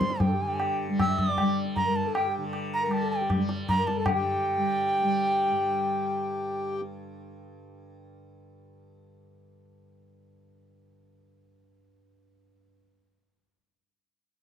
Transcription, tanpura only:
Already playing: G2 D3 G3
0.41 D3
0.89 G3
1.39 G3
1.87 G2
2.38 D3
2.87 G3
3.36 G3
3.85 G2
4.07 D3
4.56 G3
5.02 G3
5.51 G2

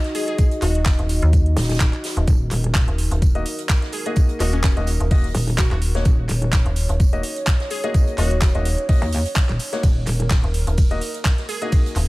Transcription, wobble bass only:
1.57 D#1
1.80 D#1
2.28 D#1
2.51 D#1
5.35 D#1
6.05 D#1
6.29 D#1
9.02 D#2
9.49 D#1
9.83 D#1
10.07 D#1

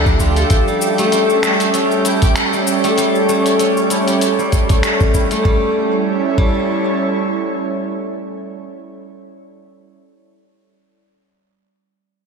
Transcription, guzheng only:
Already playing: A3 D4 E4 A4
0.20 F4
0.37 A4
0.68 G3
0.99 A3
1.12 G3
1.43 A3
1.74 C#4
2.05 E4
2.22 G4
2.53 G3
2.84 A3
2.98 G3
3.29 A3
3.60 C#4
3.90 E4
4.08 G4
4.39 G3
4.70 A3
4.83 C#4
5.14 E4
5.32 A3
5.45 G3
6.38 G3

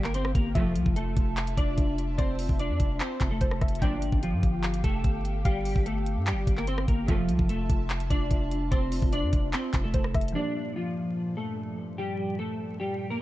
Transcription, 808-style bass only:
Already playing: G1
0.35 G1
0.55 F1
0.76 C2
0.86 F1
1.17 F1
1.57 F1
1.78 F1
2.19 F1
2.49 F1
2.70 F2
2.80 F1
3.21 F1
3.41 F1
3.62 F1
3.82 G1
4.12 G1
4.33 G2
4.43 G1
4.84 F1
5.04 G1
5.45 G1
5.76 G1
6.17 G2
6.32 G1
6.47 G1
6.88 G1
7.08 F1
7.29 C2
7.39 F1
7.70 F1
8.10 F1
8.31 F1
8.72 F1
9.02 F1
9.23 F2
9.33 F1
9.74 F1
9.94 F1
10.15 F1

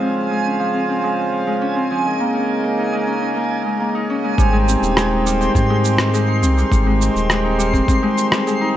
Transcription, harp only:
Already playing: F3 G#3 D#4
0.02 C4
0.31 G#3
0.46 C#4
0.60 F3
0.74 C4
0.89 C4
1.04 G#3
1.33 F3
1.47 G#3
1.61 C#4
1.76 C4
1.91 F3
2.05 G#3
2.20 A#3
2.35 C#4
2.64 A#3
2.78 D#4
2.93 G#3
3.07 C#4
3.22 C#4
3.36 A#3
3.66 G#3
3.80 A#3
3.95 D#4
4.10 C#4
4.24 G#3
4.39 G3
4.53 G#3
4.68 C4
4.97 G#3
5.11 D#4
5.26 G3
5.41 C4
5.56 C4
5.70 G#3
5.99 G3
6.14 G#3
6.28 D#4
6.43 C4
6.57 G3
6.72 G3
6.86 G#3
7.01 C4
7.30 G#3
7.44 D#4
7.59 G3
7.73 C4
7.88 C4
8.03 G#3
8.32 G3
8.47 G#3
8.61 D#4

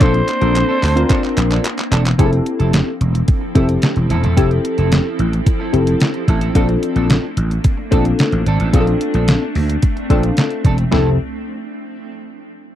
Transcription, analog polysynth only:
0.00 C4 D4 F4 A4
0.41 C4 D4 F4 A4
0.96 C4 D4 F4 A#4
2.19 C4 E4 G4 G#4
2.26 A4
3.55 C4 E4 G4 A4
4.37 C4 E4 G4 A4
5.73 C4 E4 G4 A4
6.55 C4 D4 F4 A4
7.91 C4 D4 F4 A4
8.73 C4 D4 F4 G#4
8.80 A4
10.10 C4 D4 F4 A4
10.91 C4 E4 G4 A4

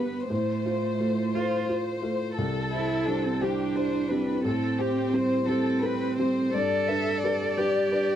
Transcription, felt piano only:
Already playing: G2 B3 G4 B4
0.30 A2
0.65 F4 C5
1.00 A3 F4 C5
1.34 A3 F4 C5
1.69 F4 C5
2.02 A3 F4 C5
2.38 C2
2.74 E4 C5
3.08 G3 E4 C5
3.41 G3 E4 C5
3.76 E4 C5
4.10 G3 C4 E4
4.45 A2
4.78 C4 C5
5.13 G3 C4 C5
5.47 G3 C4 C5
5.82 C4 A4
6.18 G3 C4 C5
6.55 G2
6.89 D4 B4
7.24 G3 D4 B4
7.57 G3 D4 B4
7.92 D4 B4

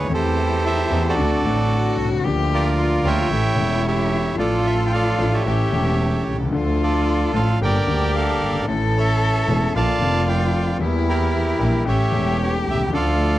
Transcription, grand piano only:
0.05 D#2 E3
0.10 E2 E3 A3 C4 G4
0.90 E2 E3 A3 C4 G4
1.17 D2 D3 A3 C4 F#4
1.43 A1 A2 D3 A3 C4
1.47 F#4
2.05 B1
2.12 C2
2.19 C#2
2.24 D2 D3 F3 A#3 D4 G4
3.03 D2 D3 F3 A#3 D4 G4
3.30 A1 A2 E3 A3 C#4 G4
3.55 E1 E2 E3 A3 C#4 G4
4.35 A1 A2 F3 A3 D4
4.40 A4
5.18 A1 A2 F3 A3 D4 A4
5.45 A1 A2 E3 A3 C#4 G4
5.70 E1 E2 E3 A3 C#4
5.75 G4
6.33 B1
6.38 C2
6.45 C#2
6.50 D2 D3 F3 A3 D4
6.54 A4
7.33 A1 A2 F3 A3 D4 A4
7.61 G1 G2 G3 A#3 D4 A4
7.86 D2 D3 G3 A#3 D4 G4
8.48 F#1
8.55 G1
8.61 G#1
8.66 A1 A2 E3 A3 C#4
8.70 A4
9.48 E1 E2 E3 A3 C#4 A4
9.75 A#1 A#2 F3 A#3 D4 A4
9.99 F1 F2 F3 A#3 D4
10.03 A4
10.79 E2 E3 G3 A#3
10.83 G4
11.59 A#1 A#2 E3 G3 A#3 G4
11.85 A1 A2 E3 A3 C#4 G4
12.11 E1 E2 E3 A3 C#4 G4
12.74 B1
12.80 C2
12.87 C#2 F3
12.92 D2 D3 A3 D4 A4

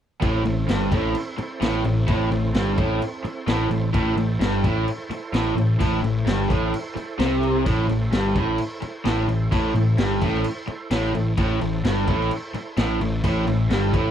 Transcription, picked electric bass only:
0.23 A1
0.46 A1
0.68 G1
0.92 A1
1.39 muted picked electric bass stroke
1.61 A1
1.84 A1
2.08 A1
2.31 A1
2.54 G1
2.78 A1
3.24 muted picked electric bass stroke
3.47 A1
3.70 A1
3.94 A1
4.16 A1
4.40 G1
4.64 A1
5.10 muted picked electric bass stroke
5.33 A1
5.55 A1
5.81 A1
6.03 A1
6.27 G1
6.51 A1
6.96 muted picked electric bass stroke
7.19 C2
7.66 A1
7.90 A1
8.13 G1
8.35 A1
8.83 muted picked electric bass stroke
9.05 A1
9.28 A1
9.52 A1
9.75 A1
9.97 G1
10.21 A1
10.68 muted picked electric bass stroke
10.91 A1
11.15 A1
11.38 A1
11.61 A1
11.84 G1
12.08 A1
12.54 muted picked electric bass stroke
12.77 A1
13.01 A1
13.24 A1
13.47 A1
13.70 G1
13.94 A1

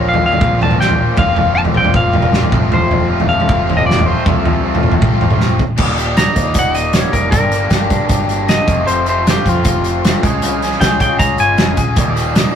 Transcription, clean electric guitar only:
0.09 F5
0.26 F5
0.63 A5
0.81 G5
1.19 F5
1.55 A5
1.77 G5
1.96 F5
2.74 C5
3.29 F5
3.77 D#5
3.86 D5
4.06 C5
4.26 A4
6.17 A#5
6.59 F#5
6.75 D#5
6.95 C#5
7.13 A#4
7.31 A#4
8.49 D#5
8.87 C5
9.09 C5
9.30 G4
9.49 F4
10.81 G5
11.01 G5
11.19 A#5
11.40 G#5

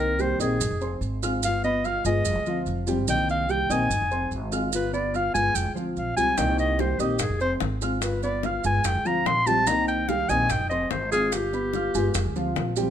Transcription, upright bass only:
Already playing: C2
0.39 A#1
0.60 G#1
0.71 F1
1.01 G#1
1.42 G1
2.05 G1
2.26 F1
2.35 D2
2.67 F1
3.08 C2
3.70 A#1
3.90 G#1
4.01 F1
4.31 G#1
4.72 G1
5.35 G1
5.55 F1
5.66 D2
5.97 A#1
6.17 C2
6.38 C2
6.99 A#1
7.20 G#1
7.30 F1
7.61 G#1
8.02 G1
8.65 G1
8.85 F1
8.95 D2
9.25 A#1
9.67 C2
10.29 A#1
10.49 G#1
10.60 F1
10.91 G#1
11.32 G1
11.94 G1
12.15 F1
12.26 D2
12.57 A#1

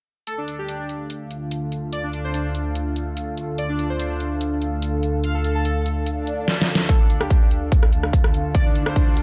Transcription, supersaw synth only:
0.27 A4
0.38 D4
0.48 D4
0.59 G4
0.69 D4
0.79 D4
1.93 D5
2.04 D4
2.13 D4
2.24 C5
2.34 D4
2.45 D4
3.58 D5
3.69 D4
3.79 D4
3.90 C5
4.00 D4
4.10 D4
5.24 F5
5.34 A4
5.44 A4
5.55 A5
5.65 A4
5.76 A4
6.89 A4
7.00 D4
7.10 D4
7.21 G4
7.31 D4
7.42 D4
8.55 D5
8.66 D4
8.76 D4
8.86 C5
8.96 D4
9.07 D4

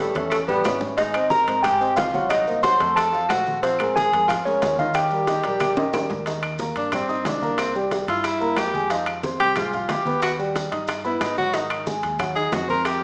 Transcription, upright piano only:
0.00 G3 G4 G5
0.15 C#4 C#5 E5
0.49 G3 G4 G5
0.66 C#4 C#5 E5
0.99 G#3 G#4 G#5
1.15 C4 C5 D#5
1.47 C4 C5 D#5
1.64 G#3 G#4 G#5
1.80 C4 C5 D#5
2.14 F#3 F#4 F#5
2.47 A#3 A#4 C5
2.63 F#3 F#4 F#5
2.80 A3 A4 C5
3.12 F3 F4 F5
3.30 A3 A4 C5
3.63 F3 F4 F5
3.80 G#3 G#4 A#4
4.12 G#3 G#4 A#4
4.29 F3 F4 F5
4.45 G#3 G#4 A#4
4.79 D#3 D#4 D#5
5.12 G3 G4 A#4
5.28 D#3 D#4 D#5
5.44 G3 G4 A#4
5.77 D#3 D#4 D#5
5.94 G3 G4 A#4
6.26 D#3 D#4 D#5
6.60 A#3 A#4 A#5
6.92 G3 G4 G5
7.09 D#4 D#5 D#6
7.42 A#3 A#4 A#5
7.75 G3 G4 G5
8.08 E4 E5 E6
8.40 A#3 A#4 A#5
8.73 G#3 G#4 G#5
8.90 F3 F4 F5
9.23 C4 C5 C6
9.56 G#3 G#4 G#5
9.73 F4 F5 F6
10.06 B3 B4 B5
10.39 G3 G4 G5
10.71 D#4 D#5 D#6
11.04 B3 B4 B5
11.38 F#3 F#4 F#5
11.54 D#3 D#4 D#5
11.87 G#3 G#4 G#5
12.19 F#3 F#4 F#5
12.35 D#4 D#5 D#6
12.68 C4 C5 C6

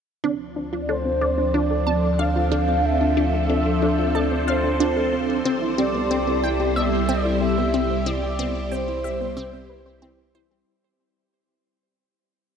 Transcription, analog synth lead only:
0.82 D5
0.89 C5
1.54 D5
2.19 F5
2.84 E5
4.15 D5
4.48 C5
5.78 D5
6.76 E5
7.22 D5
7.41 E5
8.06 D5
8.71 C5

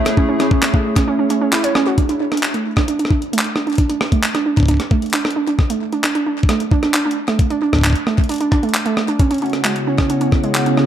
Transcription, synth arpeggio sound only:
0.17 C#4
0.29 C#4
0.40 C#4
0.51 C#4
0.74 A3
0.96 C#4
1.08 C#4
1.19 C#4
1.30 C#4
1.41 C#4
1.53 E4
1.64 C#5
1.75 C#4
1.87 F#4
1.98 D4
2.09 D4
2.20 D4
2.32 D4
2.54 A3
2.77 D4
2.88 D4
2.99 D4
3.11 D4
3.33 A3
3.56 D4
3.67 D4
3.78 D4
3.89 D4
4.12 A3
4.35 D4
4.46 D4
4.57 D4
4.68 D4
4.91 A3
5.14 D4
5.25 D4
5.36 D4
5.47 D4
5.70 A3
5.93 D4
6.04 D4
6.15 D4
6.26 D4
6.49 A3
6.72 D4
6.83 D4
6.94 D4
7.05 D4
7.28 A3
7.50 D4
7.62 D4
7.73 D4
7.84 D4
8.07 A3
8.29 D4
8.41 D4
8.52 D4
8.63 A3
8.86 A3
9.08 D4
9.20 C#4
9.31 C#4
9.42 C#4
9.65 G#3
9.87 C#4
9.99 C#4
10.10 C#4
10.21 C#4
10.44 G#3
10.66 C#4
10.78 C#4

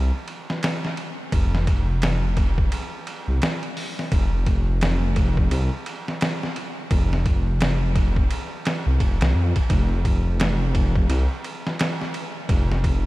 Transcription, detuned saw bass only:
Already playing: C2
1.32 F1
3.28 C2
4.12 F1
5.51 C2
6.91 F1
8.86 C2
9.00 F1
9.21 C2
9.35 F2
9.70 F1
11.09 C2
12.49 F1

